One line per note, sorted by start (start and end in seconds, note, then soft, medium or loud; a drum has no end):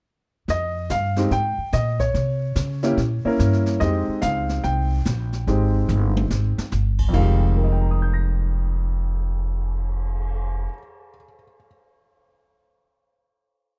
0.48 0.89 F2 medium
0.48 0.92 D#5 medium
0.48 brush sweep soft
0.48 snare soft
0.90 1.30 G2 medium
0.90 1.29 F5 medium
0.90 snare medium
0.90 hi-hat pedal medium
1.16 1.30 G#3 medium
1.16 1.30 C4 medium
1.16 1.31 D#4 medium
1.16 1.31 G4 medium
1.16 snare soft
1.31 1.56 G#2 medium
1.31 1.75 G5 medium
1.31 brush sweep soft
1.31 snare soft
1.58 muted upright bass stroke soft
1.73 2.13 A#2 medium
1.73 2.01 D#5 medium
1.73 snare medium
1.73 hi-hat pedal medium
1.99 3.62 C#5 medium
1.99 kick medium
1.99 snare soft
2.14 2.55 C3 medium
2.14 brush sweep soft
2.14 snare soft
2.56 2.96 C#3 medium
2.56 snare medium
2.56 hi-hat pedal medium
2.83 2.96 A#3 medium
2.83 2.97 C#4 medium
2.83 2.97 E4 medium
2.83 2.97 G4 medium
2.83 snare soft
2.97 3.22 A#2 medium
2.97 brush sweep soft
2.97 snare soft
3.25 3.78 A#3 medium
3.25 3.79 C#4 medium
3.25 3.79 E4 medium
3.25 3.79 A#4 medium
3.25 muted upright bass stroke soft
3.39 3.80 G2 medium
3.39 snare medium
3.39 hi-hat pedal medium
3.53 snare soft
3.66 snare soft
3.80 4.06 F2 medium
3.80 4.97 G#3 medium
3.80 4.97 C4 medium
3.80 4.98 D#4 medium
3.80 4.98 G4 medium
3.80 4.19 D#5 medium
3.80 brush sweep soft
3.80 snare soft
4.08 muted upright bass stroke soft
4.22 4.63 C#2 loud
4.22 4.65 F5 loud
4.22 snare medium
4.22 hi-hat pedal medium
4.49 snare soft
4.64 5.05 C2 medium
4.64 6.68 G5 medium
4.64 brush sweep soft
4.64 snare soft
5.05 5.46 A#1 medium
5.05 snare medium
5.05 hi-hat pedal soft
5.33 snare soft
5.47 5.88 G#1 medium
5.47 6.64 G#3 medium
5.47 6.64 C4 medium
5.47 6.64 D#4 medium
5.47 6.64 G4 medium
5.47 brush sweep soft
5.47 snare soft
5.89 6.29 G1 medium
5.89 hi-hat pedal soft
5.89 mid tom soft
6.17 high tom medium
6.30 6.56 G#1 medium
6.30 snare medium
6.58 muted upright bass stroke soft
6.58 snare medium
6.72 7.13 G1 medium
6.72 snare medium
6.72 hi-hat pedal soft
6.99 kick medium
6.99 crash medium
7.09 10.64 F2 medium
7.13 10.65 F1 medium
7.13 10.69 D#3 medium
7.13 10.72 G#3 medium
7.13 10.66 F5 medium
7.13 kick medium
7.13 crash medium
7.21 10.77 G4 medium
7.40 cymbal swell soft
7.57 11.08 A#4 soft
7.64 11.15 D#5 soft
7.72 11.24 G5 soft
7.81 11.33 A#5 soft
7.91 11.43 D#6 soft
8.02 11.54 G6 soft
8.14 11.65 A#6 soft